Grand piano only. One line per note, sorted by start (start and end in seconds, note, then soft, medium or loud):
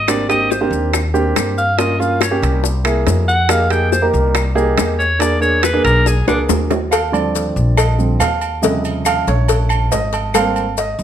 0.08 0.23 A#3 medium
0.08 0.23 C4 medium
0.08 0.23 D4 medium
0.08 0.23 G4 medium
0.29 0.51 A#3 medium
0.29 0.51 C4 medium
0.29 0.51 D4 medium
0.29 0.52 G4 medium
0.61 0.98 A#3 medium
0.61 0.98 C4 medium
0.61 0.99 D4 medium
0.61 0.99 G4 medium
1.14 1.59 A#3 medium
1.14 1.59 C4 medium
1.14 1.59 D4 medium
1.14 1.59 G4 loud
1.78 1.93 A#3 medium
1.78 1.94 C#4 medium
1.78 1.94 F4 medium
1.99 2.22 A#3 medium
1.99 2.22 C#4 medium
1.99 2.22 F4 medium
2.31 2.64 A#3 medium
2.31 2.64 C#4 medium
2.31 2.64 G4 medium
2.84 3.30 A#3 medium
2.84 3.30 E4 medium
2.84 3.30 G#4 medium
3.49 3.64 A#3 medium
3.49 3.64 D#4 medium
3.49 3.64 G4 medium
3.49 3.64 G#4 medium
3.70 3.93 A#3 medium
3.70 3.93 D#4 medium
3.70 3.93 G4 medium
3.70 3.93 G#4 medium
4.02 4.40 A#3 medium
4.02 4.40 D#4 medium
4.02 4.40 G4 medium
4.02 4.40 A#4 medium
4.55 5.01 A#3 loud
4.55 5.01 D#4 medium
4.55 5.01 G4 medium
4.55 5.01 G#4 loud
5.19 5.35 A#3 medium
5.19 5.35 D4 medium
5.19 5.35 G#4 medium
5.40 5.64 A#3 medium
5.40 5.64 D4 medium
5.40 5.64 G#4 medium
5.73 6.11 A#3 medium
5.73 6.11 D4 medium
5.73 6.11 G#4 medium
6.27 6.73 A#3 medium
6.27 6.73 D4 medium
6.27 6.73 G#4 medium
6.91 7.12 F5 medium
7.12 7.97 D3 medium
7.12 7.97 F3 medium
7.12 7.97 G3 soft
7.12 7.98 C4 medium
7.12 7.74 D5 medium
7.77 8.17 D#5 medium
7.98 8.18 D3 soft
7.98 8.18 F3 soft
7.98 8.18 G3 soft
7.98 8.18 C4 soft
8.20 8.60 F5 medium
8.62 10.31 C3 medium
8.62 10.30 C#3 medium
8.62 10.30 F3 soft
8.62 10.31 G3 medium
8.62 9.24 D#5 medium
9.06 9.27 F5 medium
9.28 9.88 C#5 medium
9.92 10.32 D#5 medium
10.34 10.63 G3 medium
10.34 10.64 A#3 medium
10.34 10.64 C4 medium
10.34 10.75 F5 medium
10.78 11.03 D#5 medium